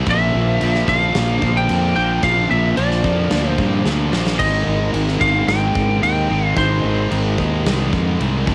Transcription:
0.06 0.31 A#1 loud
0.06 0.61 A#2 loud
0.06 1.95 D3 medium
0.06 0.61 F3 loud
0.06 0.62 A#3 loud
0.06 4.37 A#3 medium
0.06 1.94 D4 loud
0.06 4.37 F4 medium
0.06 4.37 C5 loud
0.06 kick loud
0.06 crash medium
0.10 0.89 E5 loud
0.35 0.58 A#1 loud
0.61 0.86 A#1 loud
0.61 0.87 A#2 medium
0.61 0.88 F3 medium
0.61 0.88 A#3 medium
0.61 crash medium
0.75 snare soft
0.88 1.12 A#1 loud
0.88 1.14 A#2 medium
0.88 1.15 F3 medium
0.88 1.15 A#3 medium
0.88 1.58 F5 loud
0.88 kick medium
1.15 1.39 A#1 loud
1.15 1.68 A#2 medium
1.15 1.69 F3 loud
1.15 1.69 A#3 medium
1.15 snare loud
1.15 crash medium
1.42 1.66 A#1 loud
1.42 kick medium
1.57 1.95 G5 loud
1.69 1.94 F2 medium
1.69 1.95 A#2 loud
1.69 1.95 F3 loud
1.69 1.96 A#3 loud
1.69 crash medium
1.96 2.21 A#1 medium
1.96 2.22 A#2 medium
1.96 2.22 D3 medium
1.96 2.22 F3 loud
1.96 2.23 A#3 medium
1.96 2.21 D4 medium
1.96 2.21 G5 medium
2.23 2.47 A#1 loud
2.23 2.76 A#2 loud
2.23 4.11 D3 loud
2.23 2.77 F3 loud
2.23 2.77 A#3 loud
2.23 4.10 D4 loud
2.23 2.49 F5 loud
2.23 kick loud
2.23 crash medium
2.51 2.75 A#1 medium
2.51 2.77 E5 medium
2.77 3.01 A#1 medium
2.77 3.03 A#2 medium
2.77 3.04 F3 medium
2.77 3.04 A#3 medium
2.77 3.50 D5 medium
2.77 crash medium
2.91 snare soft
3.04 3.28 F2 medium
3.04 3.30 A#2 medium
3.04 3.30 F3 medium
3.04 3.31 A#3 medium
3.04 kick medium
3.31 3.56 D2 medium
3.31 3.84 A#2 medium
3.31 3.84 F3 loud
3.31 3.85 A#3 medium
3.31 snare loud
3.31 crash medium
3.50 3.82 C5 medium
3.58 3.82 G2 medium
3.58 kick medium
3.85 4.10 D2 medium
3.85 4.11 A#2 medium
3.85 4.12 F3 medium
3.85 4.12 A#3 loud
3.85 snare medium
4.12 4.37 A#1 medium
4.12 4.38 A#2 medium
4.12 4.39 D3 medium
4.12 4.39 F3 medium
4.12 4.39 A#3 loud
4.12 4.38 D4 medium
4.12 snare medium
4.27 snare medium
4.39 4.64 G#1 loud
4.39 4.93 G#2 medium
4.39 4.93 D#3 loud
4.39 4.94 G#3 loud
4.39 8.44 G#3 medium
4.39 6.29 C4 loud
4.39 8.44 D#4 medium
4.39 6.28 D#4 loud
4.39 8.44 A#4 loud
4.39 4.90 D#5 loud
4.39 kick loud
4.39 crash medium
4.67 4.91 G#1 loud
4.93 5.18 G#1 loud
4.93 5.20 G#2 medium
4.93 5.20 D#3 medium
4.93 5.21 G#3 medium
4.93 crash medium
5.08 snare soft
5.21 5.45 G#1 medium
5.21 5.46 G#2 medium
5.21 5.47 D#3 medium
5.21 5.47 G#3 medium
5.21 5.49 F5 loud
5.21 kick medium
5.47 5.72 G#1 medium
5.47 6.01 G#2 loud
5.47 6.01 D#3 medium
5.47 6.01 G#3 loud
5.47 5.99 G5 loud
5.47 snare loud
5.47 crash medium
5.75 6.00 G#1 medium
5.75 kick medium
6.02 6.27 D#2 loud
6.02 6.28 G#2 loud
6.02 6.28 D#3 medium
6.02 6.29 G#3 loud
6.02 6.47 G5 loud
6.02 crash medium
6.29 6.54 G#1 medium
6.29 6.55 G#2 medium
6.29 6.55 D#3 medium
6.29 6.55 G#3 medium
6.29 6.57 C4 loud
6.29 6.55 D#4 loud
6.47 6.59 F5 loud
6.56 6.81 G#1 loud
6.56 7.10 G#2 loud
6.56 7.10 D#3 loud
6.56 7.10 G#3 loud
6.56 8.48 C4 loud
6.56 8.46 D#4 loud
6.56 7.62 C5 medium
6.56 kick loud
6.56 crash medium
6.84 7.08 G#1 medium
7.11 7.36 G#1 medium
7.11 7.36 G#2 medium
7.11 7.37 D#3 medium
7.11 7.37 G#3 medium
7.11 crash medium
7.38 7.63 D#2 medium
7.38 7.64 G#2 medium
7.38 7.65 D#3 medium
7.38 7.66 G#3 medium
7.38 kick medium
7.65 7.90 C2 loud
7.65 8.19 G#2 medium
7.65 8.19 D#3 medium
7.65 8.19 G#3 medium
7.65 snare loud
7.65 crash medium
7.93 8.17 F2 medium
7.93 kick medium
8.20 8.44 C2 loud
8.20 8.46 G#2 medium
8.20 8.46 D#3 medium
8.20 8.46 G#3 loud
8.20 crash medium
8.46 8.55 F1 loud
8.46 8.55 F2 medium
8.46 8.55 C3 loud
8.46 8.55 F3 medium
8.46 8.55 F3 loud
8.46 8.55 A3 loud
8.46 8.55 C4 medium
8.46 8.55 C4 loud
8.46 8.55 F4 loud
8.46 8.55 G4 loud
8.46 kick loud

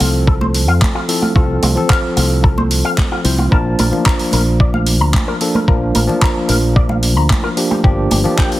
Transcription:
0.00 0.68 C2 medium
0.00 1.05 F3 loud
0.00 1.05 C4 medium
0.00 1.06 A4 loud
0.00 open hi-hat loud
0.00 high conga medium
0.27 0.32 A4 medium
0.27 kick loud
0.41 0.45 C5 medium
0.41 high conga loud
0.54 open hi-hat loud
0.68 0.80 F2 medium
0.68 0.72 F5 medium
0.82 kick loud
0.82 clap loud
0.82 high conga medium
0.95 0.99 F4 loud
1.08 1.32 F3 medium
1.08 1.32 C4 medium
1.08 1.32 E4 medium
1.08 1.33 A4 medium
1.08 open hi-hat loud
1.22 1.26 F4 medium
1.22 high conga loud
1.35 1.59 C2 loud
1.35 1.73 F3 medium
1.35 1.73 C4 medium
1.35 1.40 F4 medium
1.35 1.73 A4 loud
1.35 kick loud
1.62 1.74 C2 loud
1.62 1.67 F4 medium
1.62 open hi-hat loud
1.62 high conga medium
1.75 3.21 F3 medium
1.75 3.22 C4 medium
1.75 3.22 A4 loud
1.75 low conga medium
1.90 2.00 F5 medium
1.90 kick loud
1.90 clap loud
2.16 2.81 C2 medium
2.16 2.24 F4 medium
2.16 open hi-hat loud
2.16 high conga medium
2.44 2.48 A4 medium
2.44 kick loud
2.58 2.62 C5 medium
2.58 high conga medium
2.71 open hi-hat loud
2.85 2.89 F5 medium
2.98 kick loud
2.98 clap loud
2.98 high conga medium
3.12 3.16 F4 loud
3.24 3.48 C2 loud
3.24 3.48 F3 medium
3.24 3.48 C4 medium
3.24 3.49 E4 medium
3.24 3.49 C5 medium
3.24 open hi-hat loud
3.38 3.43 F4 medium
3.38 high conga medium
3.51 3.75 A#1 loud
3.51 3.89 F3 medium
3.51 3.89 A#3 medium
3.51 3.90 D4 medium
3.51 3.56 A#4 medium
3.51 3.90 A5 loud
3.51 kick loud
3.79 3.91 A#1 medium
3.79 3.83 A#4 medium
3.79 open hi-hat loud
3.79 high conga loud
3.91 5.37 F3 medium
3.91 5.38 A#3 medium
3.91 5.38 D4 medium
3.91 low conga medium
4.06 4.16 A#5 medium
4.06 kick loud
4.06 clap loud
4.19 open hi-hat medium
4.32 5.01 A#1 medium
4.32 4.40 A#4 medium
4.32 open hi-hat loud
4.32 high conga medium
4.60 4.64 D5 medium
4.60 kick loud
4.74 4.78 F5 medium
4.74 high conga medium
4.86 open hi-hat loud
5.01 5.12 D2 medium
5.01 5.05 A#5 medium
5.14 kick loud
5.14 clap loud
5.14 high conga medium
5.28 5.32 A#4 loud
5.40 5.65 F3 medium
5.40 5.65 A#3 medium
5.40 5.65 D4 medium
5.40 5.65 A4 medium
5.40 open hi-hat loud
5.55 5.59 A#4 medium
5.55 high conga medium
5.67 5.91 A#1 loud
5.67 6.05 F3 loud
5.67 6.05 A#3 medium
5.67 6.06 D4 medium
5.67 5.72 A#4 medium
5.67 kick loud
5.95 6.07 A#1 loud
5.95 5.99 A#4 medium
5.95 open hi-hat loud
5.95 high conga loud
6.07 7.53 F3 loud
6.07 7.54 A#3 medium
6.07 7.54 D4 medium
6.07 low conga medium
6.22 6.32 A#5 medium
6.22 kick loud
6.22 clap loud
6.49 7.17 A#1 medium
6.49 6.56 A#4 medium
6.49 open hi-hat loud
6.49 high conga medium
6.76 6.80 D5 medium
6.76 kick loud
6.89 6.94 F5 medium
6.89 high conga medium
7.03 open hi-hat loud
7.16 7.28 D2 medium
7.16 7.21 A#5 medium
7.30 kick loud
7.30 clap loud
7.30 high conga medium
7.44 7.48 A#4 loud
7.56 7.81 F3 medium
7.56 7.81 A#3 medium
7.56 7.81 D4 medium
7.56 7.81 G4 medium
7.56 open hi-hat loud
7.71 7.75 G4 medium
7.71 high conga loud
7.84 8.07 G1 loud
7.84 8.21 F3 loud
7.84 8.22 A#3 medium
7.84 8.22 D4 medium
7.84 7.88 G4 medium
7.84 8.22 G4 loud
7.84 kick loud
8.11 8.23 G1 loud
8.11 8.15 G4 medium
8.11 open hi-hat loud
8.11 high conga medium
8.24 8.60 F3 loud
8.24 8.60 A#3 medium
8.24 8.60 D4 medium
8.24 8.60 G4 loud
8.24 low conga medium
8.38 8.48 G5 medium
8.38 kick loud
8.38 clap loud
8.52 open hi-hat medium

